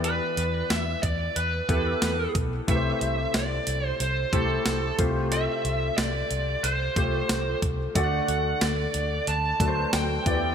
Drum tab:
HH |xxxxxxxx|xxxxxxxx|xxxxxxxx|xxxxxxxx|
SD |--o---o-|--o---o-|--o---o-|--o---o-|
BD |---o-o-o|o----o-o|-----o-o|o----o-o|